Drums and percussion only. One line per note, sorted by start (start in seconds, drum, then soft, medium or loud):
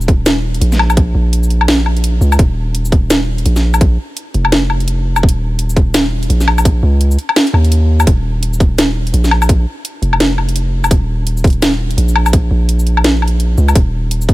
0.01 shaker soft
0.08 kick loud
0.08 closed hi-hat soft
0.26 snare loud
0.26 closed hi-hat medium
0.26 shaker medium
0.54 closed hi-hat soft
0.61 closed hi-hat medium
0.72 snare soft
0.72 shaker soft
0.79 low woodblock medium
0.90 low woodblock medium
0.90 shaker soft
0.97 kick loud
0.97 closed hi-hat medium
1.33 closed hi-hat medium
1.43 shaker soft
1.50 closed hi-hat soft
1.61 low woodblock medium
1.68 snare loud
1.68 closed hi-hat medium
1.86 low woodblock soft
1.97 closed hi-hat soft
2.04 closed hi-hat medium
2.22 shaker soft
2.32 low woodblock medium
2.32 shaker soft
2.39 kick loud
2.39 closed hi-hat medium
2.75 closed hi-hat medium
2.85 shaker soft
2.92 kick loud
2.92 closed hi-hat soft
3.10 snare loud
3.10 closed hi-hat medium
3.10 shaker medium
3.38 closed hi-hat soft
3.46 closed hi-hat medium
3.56 snare soft
3.56 shaker soft
3.74 low woodblock medium
3.74 shaker soft
3.81 kick loud
3.81 closed hi-hat medium
4.17 closed hi-hat medium
4.34 closed hi-hat soft
4.45 low woodblock medium
4.52 snare loud
4.52 closed hi-hat medium
4.70 low woodblock soft
4.80 closed hi-hat soft
4.88 closed hi-hat medium
5.16 low woodblock medium
5.16 shaker soft
5.23 kick loud
5.29 closed hi-hat medium
5.59 closed hi-hat medium
5.70 shaker soft
5.76 kick loud
5.76 closed hi-hat soft
5.94 snare loud
5.94 closed hi-hat medium
5.94 shaker medium
6.23 closed hi-hat soft
6.30 closed hi-hat medium
6.41 snare soft
6.41 shaker soft
6.48 low woodblock medium
6.58 low woodblock medium
6.58 shaker soft
6.65 kick loud
6.65 closed hi-hat medium
7.01 closed hi-hat medium
7.11 shaker soft
7.19 closed hi-hat soft
7.29 low woodblock medium
7.36 snare loud
7.36 closed hi-hat medium
7.47 closed hi-hat soft
7.54 low woodblock soft
7.65 closed hi-hat soft
7.72 closed hi-hat medium
8.00 low woodblock medium
8.00 shaker soft
8.07 kick loud
8.07 closed hi-hat medium
8.43 closed hi-hat medium
8.53 shaker soft
8.60 kick loud
8.60 closed hi-hat soft
8.78 snare loud
8.78 closed hi-hat medium
8.78 shaker medium
9.07 closed hi-hat soft
9.14 closed hi-hat medium
9.24 snare soft
9.24 shaker soft
9.31 low woodblock medium
9.42 low woodblock medium
9.42 shaker soft
9.49 kick loud
9.49 closed hi-hat medium
9.85 closed hi-hat medium
10.03 closed hi-hat soft
10.13 low woodblock medium
10.20 snare loud
10.20 closed hi-hat medium
10.38 low woodblock soft
10.49 closed hi-hat soft
10.56 closed hi-hat medium
10.84 low woodblock medium
10.84 shaker soft
10.91 kick loud
10.91 closed hi-hat medium
11.27 closed hi-hat medium
11.37 shaker soft
11.44 kick loud
11.44 closed hi-hat soft
11.47 closed hi-hat soft
11.50 closed hi-hat soft
11.53 closed hi-hat soft
11.62 snare loud
11.62 closed hi-hat medium
11.62 shaker medium
11.91 closed hi-hat soft
11.98 closed hi-hat medium
12.08 shaker soft
12.16 low woodblock medium
12.26 low woodblock medium
12.26 shaker soft
12.33 kick loud
12.33 closed hi-hat medium
12.69 closed hi-hat medium
12.79 shaker soft
12.87 closed hi-hat soft
12.97 low woodblock medium
13.04 snare loud
13.04 closed hi-hat medium
13.22 low woodblock soft
13.28 closed hi-hat soft
13.40 closed hi-hat medium
13.58 shaker soft
13.68 low woodblock medium
13.68 shaker soft
13.75 kick loud
13.75 closed hi-hat medium
14.11 closed hi-hat medium
14.22 shaker soft
14.29 kick loud
14.29 closed hi-hat soft